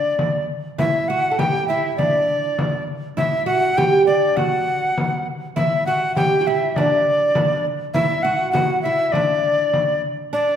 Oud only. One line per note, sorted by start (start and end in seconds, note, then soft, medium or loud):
0.00 0.45 D4 medium
0.78 1.09 E4 medium
1.10 1.31 F#4 medium
1.31 1.39 A4 medium
1.39 1.69 G4 medium
1.70 2.00 E4 medium
1.98 2.84 D4 medium
3.17 3.46 E4 medium
3.46 3.77 F#4 medium
3.78 4.09 G4 medium
4.07 4.38 D4 medium
4.37 5.23 F#4 medium
5.56 5.87 E4 medium
5.88 6.17 F#4 medium
6.17 6.38 G4 medium
6.41 6.47 F#4 medium
6.47 6.77 E4 medium
6.78 7.35 D4 medium
7.36 7.63 D4 medium
7.96 8.24 E4 medium
8.25 8.52 F#4 medium
8.53 8.85 F#4 medium
8.85 9.15 E4 medium
9.15 9.99 D4 medium
10.33 10.56 D4 medium